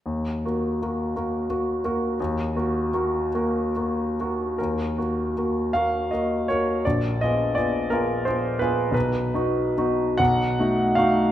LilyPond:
\new Staff \with { instrumentName = "Grand piano" } { \time 6/8 \key ees \minor \tempo 4. = 53 << { r2. | r2. | bes'4. f''8 ees''8 des''8 | d''8 ees''8 d''8 bes'8 c''8 ces''8 |
b'4. fis''4 f''8 | } \\ { ees,8 <bes ges' bes'>8 <bes ges' bes'>8 <bes ges' bes'>8 <bes ges' bes'>8 <bes ges' bes'>8 | ees,8 <bes ges' bes'>8 <bes ges' bes'>8 <bes ges' bes'>8 <bes ges' bes'>8 <bes ges' bes'>8 | ees,8 <bes ges' bes'>8 <bes ges' bes'>8 <bes ges' bes'>8 <bes ges' bes'>8 <bes ges' bes'>8 | bes,,8 <ces' f' aes'>8 <ces' f' aes'>8 <ces' f' aes'>8 <ces' f' aes'>8 <ces' f' aes'>8 |
b,,8 <b dis' fis'>8 <b dis' fis'>8 b,,8 <a dis' fis'>8 <a dis' fis'>8 | } >> }